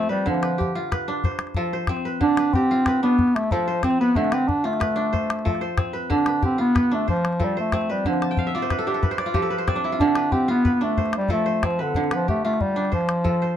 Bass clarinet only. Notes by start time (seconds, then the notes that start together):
0.10 G3
0.28 F3
2.23 D4
2.54 C4
3.03 B3
3.35 A3
3.52 F3
3.84 C4
4.00 B3
4.17 A3
4.33 C4
4.48 D4
4.66 A3
6.12 D4
6.45 C4
6.60 B3
6.95 A3
7.09 F3
7.43 G3
7.60 A3
7.91 G3
8.08 F3
10.01 D4
10.33 C4
10.50 B3
10.74 B3
10.84 A3
11.18 G3
11.32 A3
11.65 F3
11.82 D3
12.15 F3
12.30 A3
12.45 A3
12.62 G3
12.94 F3